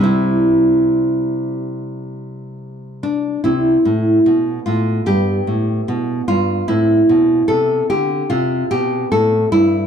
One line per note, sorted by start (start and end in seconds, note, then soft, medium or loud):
0.00 3.36 C3 medium
0.00 3.38 G3 soft
0.00 3.39 C4 soft
0.00 2.57 E4 medium
3.03 3.43 D4 medium
3.44 3.77 C3 medium
3.44 5.03 C4 soft
3.44 4.62 E4 medium
3.85 4.18 A2 soft
4.26 4.58 B2 soft
4.66 4.99 A2 soft
4.66 5.05 F4 medium
5.06 5.39 G2 medium
5.06 6.64 B3 soft
5.06 6.24 G4 medium
5.47 5.80 A2 medium
5.88 6.20 B2 medium
6.28 6.61 G2 medium
6.28 6.67 F4 medium
6.68 7.01 A2 medium
6.68 9.87 C4 soft
6.68 7.46 E4 medium
7.09 7.42 B2 medium
7.48 7.82 C3 medium
7.48 7.88 A4 medium
7.90 8.23 D3 soft
7.90 8.29 G4 medium
8.30 8.63 C3 medium
8.30 8.69 F4 medium
8.71 9.04 B2 soft
8.71 9.10 G4 medium
9.12 9.44 A2 medium
9.12 9.50 A4 medium
9.52 9.84 G2 medium
9.52 9.87 E4 medium